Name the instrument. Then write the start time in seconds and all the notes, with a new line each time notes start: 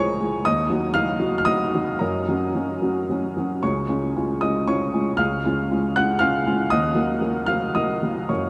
upright piano
Already playing: C#2 F3 G#3 G#4 A#4 C#5 G#5 A#5 C#6
0.20 F3 G#3 G#4
0.45 D#2 D#5 D#6
0.70 F#3 D#4 F#4
0.94 F#3 D#4 F#4 F5 F6
1.20 F#3 D#4 F#4
1.38 F6
1.45 F#3 D#4 F#4 D#5 D#6
1.75 F#3 D#4 F#4
1.99 F#2 A#4 A#5
2.28 F#3 C#4 F#4
2.55 F#3 C#4 F#4
2.82 F#3 C#4 F#4
3.10 F#3 C#4 F#4
3.37 F#3 C#4 F#4
3.63 C#2 C#5 C#6
3.88 G#3 C#4 F4
4.16 G#3 C#4 F4
4.41 G#3 C#4 F4 D#5 D#6
4.68 G#3 C#4 F4 C#5 C#6
4.94 G#3 C#4 F4
5.17 C#2 F5 F6
5.44 G#3 C#4 F4
5.71 G#3 C#4 F4
5.96 G#3 C#4 F4 F#5 F#6
6.19 G#3 C#4 F4 F5 F6
6.46 G#3 C#4 F4
6.70 D#2 D#5 D#6
6.95 F#3 A#3 F#4
7.21 F#3 A#3 F#4
7.46 F#3 A#3 F#4 F5 F6
7.75 F#3 A#3 F#4 D#5 D#6
8.03 F#3 A#3 F#4
8.29 F#2 C#5 C#6